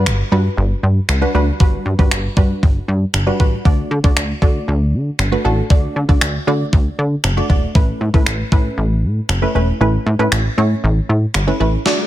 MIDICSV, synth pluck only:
0, 0, Header, 1, 2, 480
1, 0, Start_track
1, 0, Tempo, 512821
1, 1499, Time_signature, 4, 2, 24, 8
1, 11297, End_track
2, 0, Start_track
2, 0, Title_t, "Synth pluck"
2, 0, Program_c, 0, 84
2, 0, Note_on_c, 0, 55, 86
2, 0, Note_on_c, 0, 62, 82
2, 0, Note_on_c, 0, 66, 75
2, 0, Note_on_c, 0, 71, 94
2, 204, Note_off_c, 0, 55, 0
2, 205, Note_off_c, 0, 62, 0
2, 206, Note_off_c, 0, 66, 0
2, 207, Note_off_c, 0, 71, 0
2, 297, Note_on_c, 0, 55, 81
2, 298, Note_on_c, 0, 62, 76
2, 301, Note_on_c, 0, 66, 75
2, 301, Note_on_c, 0, 71, 95
2, 915, Note_off_c, 0, 55, 0
2, 916, Note_off_c, 0, 62, 0
2, 917, Note_off_c, 0, 66, 0
2, 917, Note_off_c, 0, 71, 0
2, 1135, Note_on_c, 0, 55, 89
2, 1138, Note_on_c, 0, 62, 77
2, 1140, Note_on_c, 0, 66, 82
2, 1142, Note_on_c, 0, 71, 96
2, 1225, Note_off_c, 0, 55, 0
2, 1226, Note_off_c, 0, 62, 0
2, 1227, Note_off_c, 0, 66, 0
2, 1229, Note_off_c, 0, 71, 0
2, 1260, Note_on_c, 0, 55, 87
2, 1260, Note_on_c, 0, 62, 78
2, 1262, Note_on_c, 0, 66, 80
2, 1265, Note_on_c, 0, 71, 94
2, 1436, Note_off_c, 0, 55, 0
2, 1436, Note_off_c, 0, 62, 0
2, 1436, Note_off_c, 0, 66, 0
2, 1438, Note_off_c, 0, 71, 0
2, 1499, Note_on_c, 0, 55, 87
2, 1501, Note_on_c, 0, 62, 78
2, 1503, Note_on_c, 0, 71, 95
2, 1504, Note_on_c, 0, 66, 78
2, 1763, Note_off_c, 0, 55, 0
2, 1764, Note_off_c, 0, 62, 0
2, 1765, Note_off_c, 0, 71, 0
2, 1766, Note_off_c, 0, 66, 0
2, 1859, Note_on_c, 0, 55, 89
2, 1863, Note_on_c, 0, 62, 82
2, 1863, Note_on_c, 0, 66, 76
2, 1865, Note_on_c, 0, 71, 95
2, 2124, Note_off_c, 0, 55, 0
2, 2125, Note_off_c, 0, 62, 0
2, 2125, Note_off_c, 0, 66, 0
2, 2126, Note_off_c, 0, 71, 0
2, 2217, Note_on_c, 0, 55, 86
2, 2220, Note_on_c, 0, 62, 80
2, 2221, Note_on_c, 0, 66, 76
2, 2221, Note_on_c, 0, 71, 90
2, 2835, Note_off_c, 0, 55, 0
2, 2836, Note_off_c, 0, 62, 0
2, 2837, Note_off_c, 0, 66, 0
2, 2837, Note_off_c, 0, 71, 0
2, 3057, Note_on_c, 0, 55, 89
2, 3057, Note_on_c, 0, 62, 84
2, 3060, Note_on_c, 0, 66, 81
2, 3061, Note_on_c, 0, 71, 94
2, 3146, Note_off_c, 0, 55, 0
2, 3146, Note_off_c, 0, 62, 0
2, 3147, Note_off_c, 0, 66, 0
2, 3148, Note_off_c, 0, 71, 0
2, 3178, Note_on_c, 0, 55, 88
2, 3181, Note_on_c, 0, 62, 78
2, 3182, Note_on_c, 0, 66, 83
2, 3184, Note_on_c, 0, 71, 98
2, 3355, Note_off_c, 0, 55, 0
2, 3356, Note_off_c, 0, 62, 0
2, 3357, Note_off_c, 0, 66, 0
2, 3358, Note_off_c, 0, 71, 0
2, 3420, Note_on_c, 0, 57, 84
2, 3422, Note_on_c, 0, 62, 80
2, 3424, Note_on_c, 0, 66, 80
2, 3425, Note_on_c, 0, 74, 93
2, 3684, Note_off_c, 0, 57, 0
2, 3685, Note_off_c, 0, 62, 0
2, 3686, Note_off_c, 0, 66, 0
2, 3686, Note_off_c, 0, 74, 0
2, 3780, Note_on_c, 0, 57, 86
2, 3781, Note_on_c, 0, 62, 80
2, 3783, Note_on_c, 0, 66, 78
2, 3784, Note_on_c, 0, 74, 92
2, 4044, Note_off_c, 0, 57, 0
2, 4044, Note_off_c, 0, 62, 0
2, 4045, Note_off_c, 0, 66, 0
2, 4046, Note_off_c, 0, 74, 0
2, 4138, Note_on_c, 0, 57, 81
2, 4141, Note_on_c, 0, 62, 75
2, 4142, Note_on_c, 0, 66, 74
2, 4144, Note_on_c, 0, 74, 90
2, 4756, Note_off_c, 0, 57, 0
2, 4757, Note_off_c, 0, 62, 0
2, 4757, Note_off_c, 0, 66, 0
2, 4758, Note_off_c, 0, 74, 0
2, 4977, Note_on_c, 0, 57, 89
2, 4979, Note_on_c, 0, 62, 80
2, 4981, Note_on_c, 0, 66, 83
2, 4983, Note_on_c, 0, 71, 100
2, 5066, Note_off_c, 0, 57, 0
2, 5067, Note_off_c, 0, 62, 0
2, 5068, Note_off_c, 0, 66, 0
2, 5069, Note_off_c, 0, 71, 0
2, 5096, Note_on_c, 0, 57, 87
2, 5097, Note_on_c, 0, 62, 77
2, 5101, Note_on_c, 0, 66, 78
2, 5101, Note_on_c, 0, 69, 98
2, 5274, Note_off_c, 0, 57, 0
2, 5274, Note_off_c, 0, 62, 0
2, 5276, Note_off_c, 0, 66, 0
2, 5276, Note_off_c, 0, 69, 0
2, 5337, Note_on_c, 0, 57, 85
2, 5339, Note_on_c, 0, 62, 75
2, 5342, Note_on_c, 0, 66, 75
2, 5342, Note_on_c, 0, 74, 96
2, 5603, Note_off_c, 0, 57, 0
2, 5604, Note_off_c, 0, 62, 0
2, 5605, Note_off_c, 0, 66, 0
2, 5605, Note_off_c, 0, 74, 0
2, 5696, Note_on_c, 0, 57, 82
2, 5698, Note_on_c, 0, 62, 78
2, 5699, Note_on_c, 0, 66, 78
2, 5702, Note_on_c, 0, 74, 91
2, 5962, Note_off_c, 0, 57, 0
2, 5963, Note_off_c, 0, 62, 0
2, 5964, Note_off_c, 0, 66, 0
2, 5965, Note_off_c, 0, 74, 0
2, 6059, Note_on_c, 0, 57, 87
2, 6059, Note_on_c, 0, 62, 78
2, 6062, Note_on_c, 0, 66, 77
2, 6064, Note_on_c, 0, 74, 89
2, 6676, Note_off_c, 0, 57, 0
2, 6676, Note_off_c, 0, 62, 0
2, 6677, Note_off_c, 0, 66, 0
2, 6679, Note_off_c, 0, 74, 0
2, 6897, Note_on_c, 0, 57, 93
2, 6898, Note_on_c, 0, 62, 83
2, 6900, Note_on_c, 0, 66, 80
2, 6903, Note_on_c, 0, 74, 98
2, 6986, Note_off_c, 0, 57, 0
2, 6987, Note_off_c, 0, 62, 0
2, 6987, Note_off_c, 0, 66, 0
2, 6989, Note_off_c, 0, 74, 0
2, 7016, Note_on_c, 0, 57, 84
2, 7018, Note_on_c, 0, 62, 81
2, 7020, Note_on_c, 0, 66, 83
2, 7021, Note_on_c, 0, 74, 98
2, 7194, Note_off_c, 0, 57, 0
2, 7195, Note_off_c, 0, 62, 0
2, 7196, Note_off_c, 0, 66, 0
2, 7196, Note_off_c, 0, 74, 0
2, 7257, Note_on_c, 0, 57, 86
2, 7258, Note_on_c, 0, 61, 79
2, 7260, Note_on_c, 0, 64, 79
2, 7262, Note_on_c, 0, 71, 96
2, 7522, Note_off_c, 0, 57, 0
2, 7523, Note_off_c, 0, 61, 0
2, 7524, Note_off_c, 0, 64, 0
2, 7525, Note_off_c, 0, 71, 0
2, 7617, Note_on_c, 0, 57, 88
2, 7617, Note_on_c, 0, 61, 76
2, 7618, Note_on_c, 0, 64, 77
2, 7620, Note_on_c, 0, 71, 96
2, 7882, Note_off_c, 0, 57, 0
2, 7883, Note_off_c, 0, 61, 0
2, 7883, Note_off_c, 0, 64, 0
2, 7884, Note_off_c, 0, 71, 0
2, 7976, Note_on_c, 0, 57, 81
2, 7979, Note_on_c, 0, 61, 75
2, 7980, Note_on_c, 0, 64, 79
2, 7982, Note_on_c, 0, 71, 89
2, 8595, Note_off_c, 0, 57, 0
2, 8596, Note_off_c, 0, 61, 0
2, 8596, Note_off_c, 0, 64, 0
2, 8597, Note_off_c, 0, 71, 0
2, 8817, Note_on_c, 0, 57, 90
2, 8819, Note_on_c, 0, 61, 81
2, 8820, Note_on_c, 0, 64, 80
2, 8821, Note_on_c, 0, 71, 96
2, 8906, Note_off_c, 0, 57, 0
2, 8907, Note_off_c, 0, 61, 0
2, 8908, Note_off_c, 0, 64, 0
2, 8908, Note_off_c, 0, 71, 0
2, 8939, Note_on_c, 0, 57, 89
2, 8940, Note_on_c, 0, 61, 77
2, 8942, Note_on_c, 0, 64, 78
2, 8944, Note_on_c, 0, 71, 96
2, 9115, Note_off_c, 0, 57, 0
2, 9116, Note_off_c, 0, 61, 0
2, 9117, Note_off_c, 0, 64, 0
2, 9117, Note_off_c, 0, 71, 0
2, 9179, Note_on_c, 0, 57, 88
2, 9181, Note_on_c, 0, 61, 80
2, 9182, Note_on_c, 0, 64, 78
2, 9184, Note_on_c, 0, 71, 96
2, 9444, Note_off_c, 0, 57, 0
2, 9444, Note_off_c, 0, 61, 0
2, 9445, Note_off_c, 0, 64, 0
2, 9446, Note_off_c, 0, 71, 0
2, 9539, Note_on_c, 0, 57, 84
2, 9541, Note_on_c, 0, 61, 79
2, 9542, Note_on_c, 0, 64, 79
2, 9545, Note_on_c, 0, 71, 96
2, 9803, Note_off_c, 0, 57, 0
2, 9804, Note_off_c, 0, 61, 0
2, 9805, Note_off_c, 0, 64, 0
2, 9806, Note_off_c, 0, 71, 0
2, 9898, Note_on_c, 0, 57, 82
2, 9901, Note_on_c, 0, 61, 80
2, 9903, Note_on_c, 0, 64, 74
2, 9904, Note_on_c, 0, 73, 91
2, 10516, Note_off_c, 0, 57, 0
2, 10517, Note_off_c, 0, 61, 0
2, 10518, Note_off_c, 0, 64, 0
2, 10519, Note_off_c, 0, 73, 0
2, 10738, Note_on_c, 0, 61, 81
2, 10739, Note_on_c, 0, 57, 91
2, 10742, Note_on_c, 0, 64, 82
2, 10742, Note_on_c, 0, 71, 98
2, 10827, Note_off_c, 0, 57, 0
2, 10827, Note_off_c, 0, 61, 0
2, 10828, Note_off_c, 0, 64, 0
2, 10829, Note_off_c, 0, 71, 0
2, 10857, Note_on_c, 0, 57, 88
2, 10860, Note_on_c, 0, 61, 82
2, 10861, Note_on_c, 0, 64, 80
2, 10863, Note_on_c, 0, 71, 92
2, 11034, Note_off_c, 0, 57, 0
2, 11036, Note_off_c, 0, 61, 0
2, 11036, Note_off_c, 0, 64, 0
2, 11037, Note_off_c, 0, 71, 0
2, 11096, Note_on_c, 0, 57, 89
2, 11098, Note_on_c, 0, 62, 82
2, 11100, Note_on_c, 0, 66, 80
2, 11102, Note_on_c, 0, 74, 97
2, 11297, Note_off_c, 0, 57, 0
2, 11297, Note_off_c, 0, 62, 0
2, 11297, Note_off_c, 0, 66, 0
2, 11297, Note_off_c, 0, 74, 0
2, 11297, End_track
0, 0, End_of_file